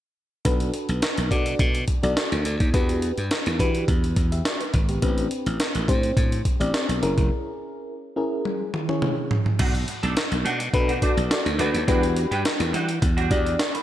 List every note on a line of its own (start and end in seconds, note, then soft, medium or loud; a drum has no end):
0.45 0.69 B1 medium
0.45 1.02 D4 medium
0.45 1.02 F#4 medium
0.45 1.02 A4 medium
0.45 1.02 B4 medium
0.45 kick loud
0.45 closed hi-hat medium
0.60 closed hi-hat medium
0.74 closed hi-hat medium
0.89 1.00 B1 medium
0.89 closed hi-hat soft
1.02 snare loud
1.02 closed hi-hat medium
1.18 1.29 B1 medium
1.18 closed hi-hat soft
1.31 1.55 B2 medium
1.31 1.79 D4 medium
1.31 1.79 F#4 medium
1.31 1.79 A4 medium
1.31 1.79 D5 medium
1.31 kick medium
1.31 closed hi-hat medium
1.46 closed hi-hat medium
1.59 1.84 B2 loud
1.59 kick loud
1.59 closed hi-hat medium
1.75 closed hi-hat medium
1.88 kick medium
1.88 closed hi-hat medium
2.03 2.15 B1 medium
2.03 2.50 D4 medium
2.03 2.50 F#4 medium
2.03 2.50 A4 medium
2.03 2.50 D5 medium
2.03 closed hi-hat soft
2.17 snare loud
2.17 closed hi-hat medium
2.32 2.43 D2 medium
2.32 closed hi-hat soft
2.45 2.58 D2 medium
2.45 closed hi-hat medium
2.60 2.72 D#2 medium
2.60 kick medium
2.60 closed hi-hat medium
2.73 3.11 E2 medium
2.73 3.31 D4 medium
2.73 3.31 F#4 medium
2.73 3.31 G4 medium
2.73 3.31 B4 loud
2.73 kick loud
2.73 closed hi-hat medium
2.89 closed hi-hat medium
3.02 closed hi-hat medium
3.18 3.29 G2 medium
3.18 closed hi-hat soft
3.31 snare loud
3.31 closed hi-hat medium
3.46 3.58 E2 medium
3.46 closed hi-hat medium
3.59 3.84 E3 loud
3.59 4.07 D4 medium
3.59 4.07 F#4 medium
3.59 4.08 G4 medium
3.59 4.08 B4 medium
3.59 kick medium
3.59 closed hi-hat medium
3.75 closed hi-hat medium
3.88 4.12 E2 medium
3.88 kick loud
3.88 closed hi-hat medium
4.04 closed hi-hat medium
4.16 4.41 E2 loud
4.16 kick medium
4.16 closed hi-hat medium
4.32 4.45 G4 medium
4.32 4.45 E5 medium
4.32 closed hi-hat soft
4.45 4.60 F#4 medium
4.45 4.60 D5 medium
4.45 snare loud
4.45 closed hi-hat medium
4.60 4.88 D4 medium
4.60 4.88 B4 medium
4.60 closed hi-hat soft
4.74 4.98 G#1 medium
4.74 kick medium
4.74 closed hi-hat medium
4.89 5.16 B3 soft
4.89 5.01 G4 medium
4.89 closed hi-hat medium
5.02 5.26 A1 loud
5.02 5.59 C4 medium
5.02 5.59 D4 medium
5.02 5.59 G4 medium
5.02 5.60 B4 medium
5.02 kick loud
5.02 closed hi-hat medium
5.18 closed hi-hat medium
5.31 closed hi-hat medium
5.46 5.58 A1 loud
5.46 closed hi-hat soft
5.60 snare medium
5.60 closed hi-hat medium
5.75 5.90 A1 medium
5.75 closed hi-hat medium
5.88 6.12 A2 loud
5.88 6.36 C4 medium
5.88 6.36 D4 medium
5.88 6.36 G4 medium
5.88 6.36 C5 medium
5.88 kick medium
5.88 closed hi-hat medium
6.03 closed hi-hat medium
6.17 6.41 A2 medium
6.17 kick loud
6.17 closed hi-hat medium
6.32 closed hi-hat medium
6.45 kick medium
6.45 closed hi-hat medium
6.60 6.72 A1 medium
6.60 7.02 C4 medium
6.60 7.02 D4 medium
6.60 7.02 G4 medium
6.60 7.03 D5 medium
6.60 closed hi-hat soft
6.74 snare loud
6.74 closed hi-hat medium
6.89 7.00 B1 medium
6.89 closed hi-hat soft
7.02 7.15 F#1 medium
7.02 7.94 C#4 medium
7.02 7.94 E4 medium
7.02 7.94 G#4 medium
7.02 7.94 A#4 medium
7.02 closed hi-hat medium
7.18 7.29 F1 medium
7.18 kick medium
7.18 closed hi-hat soft
8.16 8.64 C#4 medium
8.16 8.65 E4 medium
8.16 8.65 G#4 medium
8.16 8.65 A#4 medium
8.45 high tom medium
8.74 mid tom medium
8.88 9.36 C#4 medium
8.88 9.36 E4 medium
8.88 9.36 G#4 medium
8.88 9.36 C#5 medium
8.88 mid tom medium
9.02 mid tom medium
9.31 floor tom loud
9.46 floor tom medium
9.59 9.84 B1 loud
9.59 9.73 A3 medium
9.59 9.74 D4 medium
9.59 9.73 F#4 loud
9.59 kick loud
9.59 closed hi-hat medium
9.59 crash medium
9.74 muted clean electric guitar stroke medium
9.74 closed hi-hat medium
9.88 muted clean electric guitar stroke soft
9.88 closed hi-hat medium
10.03 10.15 B1 medium
10.03 10.13 A3 soft
10.03 10.13 D4 medium
10.03 10.13 A4 medium
10.03 closed hi-hat soft
10.17 snare loud
10.17 closed hi-hat medium
10.31 10.43 B1 medium
10.31 muted clean electric guitar stroke soft
10.31 closed hi-hat medium
10.45 10.69 B2 loud
10.45 10.59 A3 medium
10.45 10.59 D4 medium
10.45 10.59 F#4 medium
10.45 closed hi-hat medium
10.60 muted clean electric guitar stroke soft
10.60 closed hi-hat medium
10.73 10.98 B2 medium
10.73 10.93 D4 loud
10.73 10.93 F#4 medium
10.73 10.93 A4 medium
10.73 10.94 B4 loud
10.73 muted clean electric guitar stroke soft
10.73 kick loud
10.73 closed hi-hat medium
10.88 10.99 A3 soft
10.88 10.99 D4 medium
10.88 10.98 F#4 medium
10.88 closed hi-hat medium
11.02 11.16 A3 medium
11.02 11.22 D4 medium
11.02 11.16 D4 medium
11.02 11.22 F#4 medium
11.02 11.16 F#4 medium
11.02 11.22 A4 medium
11.02 11.22 D5 loud
11.02 kick medium
11.02 closed hi-hat medium
11.17 11.29 B1 medium
11.17 muted clean electric guitar stroke soft
11.17 closed hi-hat medium
11.30 11.50 D4 medium
11.30 11.51 F#4 medium
11.30 11.51 A4 medium
11.30 11.51 D5 medium
11.30 muted clean electric guitar stroke soft
11.30 snare loud
11.30 closed hi-hat medium
11.45 11.57 D2 medium
11.45 muted clean electric guitar stroke soft
11.45 closed hi-hat soft
11.59 11.72 D2 medium
11.59 11.73 A3 loud
11.59 11.73 D4 loud
11.59 11.79 D4 medium
11.59 11.79 F#4 medium
11.59 11.73 F#4 loud
11.59 11.79 A4 medium
11.59 11.79 B4 medium
11.59 closed hi-hat medium
11.74 11.86 D#2 medium
11.74 muted clean electric guitar stroke soft
11.74 closed hi-hat medium
11.87 12.25 E2 loud
11.87 12.02 G3 medium
11.87 12.64 D4 loud
11.87 12.02 D4 medium
11.87 12.65 F#4 medium
11.87 12.01 F#4 medium
11.87 12.65 G4 medium
11.87 12.65 B4 loud
11.87 kick loud
11.87 closed hi-hat medium
12.03 muted clean electric guitar stroke soft
12.03 closed hi-hat medium
12.16 muted clean electric guitar stroke soft
12.16 closed hi-hat medium
12.31 12.43 G2 medium
12.31 12.42 G3 medium
12.31 12.42 D4 medium
12.31 12.41 G4 medium
12.31 closed hi-hat soft
12.45 snare loud
12.45 closed hi-hat loud
12.60 12.71 E2 medium
12.60 muted clean electric guitar stroke soft
12.60 closed hi-hat medium
12.73 12.98 E3 medium
12.73 12.87 G3 medium
12.73 12.88 D4 medium
12.73 12.87 F#4 medium
12.73 closed hi-hat medium
12.88 muted clean electric guitar stroke soft
12.88 closed hi-hat medium
13.02 13.26 E2 loud
13.02 muted clean electric guitar stroke soft
13.02 kick loud
13.02 closed hi-hat medium
13.17 13.29 G3 medium
13.17 13.30 D4 medium
13.17 13.30 F#4 medium
13.17 closed hi-hat medium
13.30 13.55 E2 loud
13.30 13.79 D4 medium
13.30 13.59 F#4 medium
13.30 13.59 G4 medium
13.30 13.60 D5 medium
13.30 muted clean electric guitar stroke soft
13.30 kick medium
13.30 closed hi-hat medium
13.46 muted clean electric guitar stroke soft
13.46 closed hi-hat soft
13.59 muted clean electric guitar stroke soft
13.59 snare loud
13.59 closed hi-hat medium
13.74 13.83 D5 soft
13.74 13.83 B5 medium
13.74 muted clean electric guitar stroke soft
13.74 closed hi-hat medium